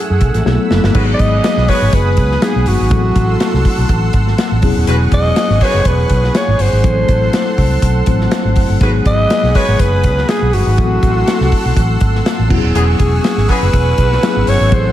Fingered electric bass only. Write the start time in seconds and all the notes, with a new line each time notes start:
0.10 F#2
0.21 B1
0.35 A1
0.46 B1
0.71 F#1
0.84 G1
0.95 G#1
1.19 G#1
1.57 B1
1.82 G#1
1.93 F#1
2.17 C#2
2.56 B1
2.67 G1
2.80 G#1
2.91 A1
3.16 A1
3.54 C2
3.78 B1
3.89 A1
4.14 G#1
4.51 A1
4.63 E1
4.76 D#1
4.87 E1
5.12 E1
5.50 G#1
5.74 F#1
5.85 E1
6.10 B1
6.48 G#1
6.59 G1
6.72 G#1
6.84 A1
7.09 A1
7.58 C2
7.82 B1
8.07 A1
8.45 G#1
8.56 F#1
8.69 G1
8.81 G#1
9.06 G#1
9.43 B1
9.68 G#1
9.79 F#1
10.04 C#2
10.42 B1
10.53 G1
10.67 G#1
10.78 A1
11.03 A1
11.41 C2
11.65 B1
11.77 A1
12.01 G#1
12.39 A1
12.50 E1
12.64 D#1
12.75 E1
13.00 E1
13.37 G#1
13.62 F#1
13.73 E1
13.98 B1
14.36 G#1
14.47 G1
14.61 G#1
14.72 A1